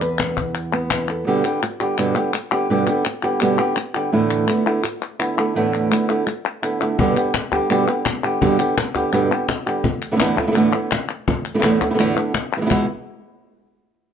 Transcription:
Already playing: E2
0.01 B4, clap
0.19 cajon slap, clap
0.37 cajon bass
0.55 clap
0.73 B3, cajon slap
0.91 cajon slap, clap
1.09 A4, cajon slap
1.27 G2 B2 D3 G3 B3 G4
1.45 D3 G3 B3 G4, clap
1.63 muted nylon-string guitar stroke, clap
1.80 D3 G3 B3 G4
1.98 G2 B2 D3 G3 B3 G4, clap
2.16 D3 G3 B3 G4
2.34 muted nylon-string guitar stroke, clap
2.52 D3 G3 B3 G4
2.70 G2 B2 D3 G3 B3 G4
2.87 D3 G3 B3 G4, clap
3.05 muted nylon-string guitar stroke, clap
3.23 D3 G3 B3 G4
3.40 G2 B2 D3 G3 B3 G4, clap
3.59 D3 G3 B3 G4
3.76 muted nylon-string guitar stroke, clap
3.94 D3 G3 B3 G4
4.12 E2 A2 D3 A3 B3 E4
4.30 clap
4.48 D3 A3 B3 E4, clap
4.66 D3 A3 B3 E4
4.84 muted nylon-string guitar stroke, clap
5.19 D3 A3 B3 E4, clap
5.37 D3 A3 B3 E4
5.55 E2 A2 D3 A3 B3 E4
5.74 clap
5.91 D3 A3 B3 E4, clap
6.09 D3 A3 B3 E4
6.27 muted nylon-string guitar stroke, clap
6.62 D3 A3 B3 E4, clap
6.80 D3 A3 B3 E4
6.98 G2 B2 D3 G3 B3 G4, cajon bass
7.16 D3 G3 B3 G4, clap
7.34 muted nylon-string guitar stroke, cajon slap, clap
7.52 D3 G3 B3 G4, cajon bass, cajon slap
7.70 G2 B2 D3 G3 B3 G4, clap
7.88 D3 G3 B3 G4
8.05 muted nylon-string guitar stroke, cajon slap, clap
8.24 D3 G3 B3 G4
8.41 G2 B2 D3 G3 B3 G4, cajon bass
8.59 D3 G3 B3 G4, clap
8.78 muted nylon-string guitar stroke, cajon slap, clap
8.95 D3 G3 B3 G4, cajon bass, cajon slap
9.13 G2 B2 D3 G3 B3 G4, clap
9.30 D3 G3 B3 G4, cajon slap
9.49 muted nylon-string guitar stroke, cajon slap, clap
9.66 D3 G3 B3 G4, cajon slap
9.84 muted nylon-string guitar stroke, cajon bass
10.02 clap
10.11 A2 D3 A3 B3 E4
10.16 A2 D3 A3 B3 E4
10.20 E2 A2 D3 A3 B3 E4, cajon slap, clap
10.38 D3 A3 B3 E4, cajon bass, cajon slap
10.42 A2 A3 B3 E4
10.47 A2 D3 A3 B3 E4
10.51 A2 D3 A3 B3 E4, clap
10.56 E2 A2 D3 A3 B3 E4
10.74 D3 A3 B3 E4, cajon slap
10.91 muted nylon-string guitar stroke, cajon slap, clap
11.28 muted nylon-string guitar stroke, cajon bass
11.45 clap
11.54 A2 D3 A3 B3 E4
11.59 A2 D3 A3 B3 E4, clap
11.63 E2 A2 D3 A3 B3 E4, cajon slap
11.81 D3 A3 B3 E4, cajon bass, cajon slap
11.90 A2 D3 A3 B3 E4
11.94 A2 D3 A3 B3 E4
11.99 E2 A2 D3 A3 B3 E4, clap
12.16 D3 A3 B3 E4
12.34 muted nylon-string guitar stroke, cajon slap, clap
12.57 B2 E3 G#3 B3 E4
12.61 B2 E3 G#3 B3 E4
12.66 B2 E3 G#3 B3 E4
12.70 E2 B2 E3 G#3 B3 E4, cajon bass, clap

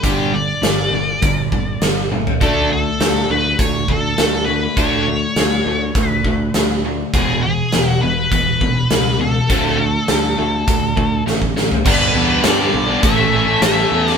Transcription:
0.03 G1 G2 D3 G3 G4, kick, closed hi-hat
0.33 G2 D3 D5
0.62 G1 G2 D3, snare, closed hi-hat
0.91 G1 G2 D3
1.22 G1 G2 D3, kick, closed hi-hat
1.52 G1 G2 D3, kick
1.81 G1 G2 D3, snare, closed hi-hat
2.11 G2 D3, high tom
2.27 floor tom
2.41 D2 D3 A3 D4 A4, kick, closed hi-hat
2.70 D3 A3 A4
3.00 D2 D3 A3, snare, closed hi-hat
3.30 D2 D3 A3 B4
3.59 D2 D3 A3 C#5, kick, closed hi-hat
3.88 D2 D3 A3 A4, kick
4.18 D2 D3 A3, snare, closed hi-hat
4.45 D3 A3 B4
4.77 D2 D3 A3 D4 C#5, kick, closed hi-hat
5.07 D3 A3
5.36 D2 D3 A3, snare, closed hi-hat
5.66 D2 D3 A3
5.95 D2 D3 A3, kick, closed hi-hat
6.09 B4
6.24 D2 D3 A3, kick
6.54 D2 D3 A3, snare, closed hi-hat
6.86 D3 A3
7.14 E1 E2 B2 E3 G#4, kick, closed hi-hat
7.43 E2 B2 G#4
7.72 E1 E2 B2, snare, closed hi-hat
7.90 F#4
8.02 E1 E2 B2 B4
8.32 E1 E2 B2 B4, kick, closed hi-hat
8.61 E1 E2 B2, kick
8.90 C#2 E2 B2, snare, closed hi-hat
9.20 E2 B2 A4
9.50 D2 D3 A3 C4, kick, closed hi-hat
9.80 D3 A3
10.08 D2 D3 A3, snare, closed hi-hat
10.38 D2 D3 A3
10.68 D2 D3 A3, kick, closed hi-hat
10.97 D2 D3 A3, kick
11.26 A1 D3 A3, snare
11.42 kick
11.57 D3 A3, snare
11.72 floor tom
11.85 G1 G2 D3 G3 B3 D4 G4 B4, kick, crash
12.14 E2 G3 B3 D4 G4
12.44 G2 D3 G3 B3 D4 G4 D5, snare, closed hi-hat
12.59 G3 B3 D4 G4
12.74 B1, muted overdriven electric guitar stroke
12.88 G3 B3 D4 G4
13.02 A1 A2 E3 A3 C#4 A4 E5, kick, closed hi-hat
13.17 A3 C#4 A4
13.31 A1 E3 A3 C#4 A4
13.45 A3 C#4 A4
13.61 A1 A2 E3 A3 C#4 A4 E5, snare, closed hi-hat
13.75 A3 C#4 A4
13.91 E2 E3 A3 C#4 A4
14.07 D5, snare

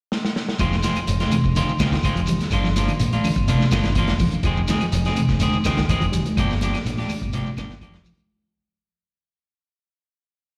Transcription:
0.12 snare
0.25 snare
0.36 snare
0.49 snare
0.59 F1 D#3 F3 G#3 C4 F4, kick, closed hi-hat, high conga, claves, shekere
0.72 snare, shekere
0.83 D#3 F3 G#3 C4 F4, snare, closed hi-hat, high conga, shekere
0.96 muted clean electric guitar stroke, muted fingered electric bass stroke, closed hi-hat, claves, shekere
1.07 F1, closed hi-hat, high conga, shekere
1.20 G#3 C4 F4, snare, closed hi-hat, high conga, shekere
1.31 C3, muted fingered electric bass stroke, closed hi-hat, low conga, claves, shekere
1.44 F1, kick, shekere
1.56 D3 D#3 G#3 C4 F4, closed hi-hat, high conga, shekere
1.69 D#3, shekere
1.79 D2 D#3 G#3 C4 F4, kick, snare, closed hi-hat, high conga, claves, shekere
1.92 D#3, kick, snare, closed hi-hat, shekere
2.03 D#3 G#3 C4 F4, kick, closed hi-hat, high conga, claves, shekere
2.15 F1 F3, closed hi-hat, shekere
2.27 G3, closed hi-hat, low conga, shekere
2.39 snare, closed hi-hat, shekere
2.50 G1 F3 A#3 D4 F4, kick, closed hi-hat, high conga, claves, shekere
2.64 F3, snare, shekere
2.76 F3 A#3 D4 F4, closed hi-hat, high conga, shekere
2.88 D#3, closed hi-hat, claves, shekere
3.00 A#1, closed hi-hat, high conga, shekere
3.13 A#3 D4 F4, closed hi-hat, high conga, shekere
3.24 D3, open hi-hat, low conga, claves, shekere
3.36 G1, kick, closed hi-hat, shekere
3.48 C3 F3 A#3 D4 F4, closed hi-hat, high conga, shekere
3.61 snare, shekere
3.71 G1 D3 F3 A#3 D4 F4, kick, snare, closed hi-hat, high conga, claves, shekere
3.83 D#3, kick, snare, closed hi-hat, shekere
3.95 F3 A#3 D4 F4, muted clean electric guitar stroke, kick, closed hi-hat, high conga, low conga, claves, shekere
4.07 F1, snare, closed hi-hat, shekere
4.19 F3, kick, open hi-hat, low conga, shekere
4.31 D3, closed hi-hat, shekere
4.43 F1 D#3 F3 G#3 C4 G#4, kick, closed hi-hat, claves, shekere
4.56 shekere
4.68 D#3 G#3 C4 G#4, snare, closed hi-hat, high conga, shekere
4.81 F3, muted fingered electric bass stroke, closed hi-hat, claves, shekere
4.92 F1, closed hi-hat, high conga, shekere
5.05 G#3 C4 G#4, snare, closed hi-hat, high conga, shekere
5.16 C3, muted fingered electric bass stroke, closed hi-hat, low conga, claves, shekere
5.29 F1, kick, snare, shekere
5.40 D3 D#3 C4 G#4, muted clean electric guitar stroke, closed hi-hat, high conga, shekere
5.53 D#3, shekere
5.64 D2 D#3 G#3 C4 G#4, kick, snare, closed hi-hat, high conga, low conga, claves, shekere
5.77 D#3, kick, snare, closed hi-hat, shekere
5.89 D#3 G#3 C4 G#4, kick, closed hi-hat, high conga, low conga, claves, shekere
6.00 F1 F3, closed hi-hat, shekere
6.12 G3, closed hi-hat, low conga, shekere
6.25 closed hi-hat, high conga, shekere
6.37 G1 F3 A#3 D4 G4, kick, closed hi-hat, high conga, claves, shekere
6.49 F3, snare, shekere
6.61 F3 A#3 D4 G4, closed hi-hat, high conga, shekere
6.74 snare, closed hi-hat, claves, shekere
6.85 A#1, snare, closed hi-hat, high conga, shekere
6.97 A#3 D4 G4, snare, closed hi-hat, high conga, shekere
7.09 muted clean electric guitar stroke, open hi-hat, low conga, claves, shekere
7.22 G1, kick, closed hi-hat, shekere
7.33 C3 F3 A#3 D4 G4, closed hi-hat, high conga, shekere
7.46 shekere
7.57 G1 D3 F3 A#3 D4 G4, kick, snare, closed hi-hat, high conga, low conga, claves, shekere
7.69 D#3, kick, snare, closed hi-hat, shekere
7.81 F3 A#3 D4 G4, kick, closed hi-hat, high conga, low conga, claves, shekere
7.93 F1, snare, closed hi-hat, shekere
8.04 F3, kick, open hi-hat, low conga, shekere
8.18 muted clean electric guitar stroke, closed hi-hat, high conga, shekere

